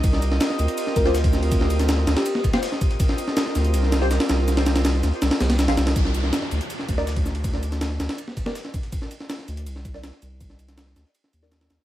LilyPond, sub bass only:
\new Staff \with { instrumentName = "Sub bass" } { \clef bass \time 4/4 \key c \minor \tempo 4 = 162 c,4 r8 d,16 r8. d,4.~ | d,4. d,16 r2 r16 | r4. d,8 c,4~ c,16 r16 c,8~ | c,4. d,16 r16 c,16 r16 c,8. bes,,16 c,8 |
c,4 r8 d,16 r8. d,4.~ | d,4. d,16 r2 r16 | r4. d,8 c,4~ c,16 r16 c,8~ | c,4. d,16 r8. ees,4 ees,16 r16 | }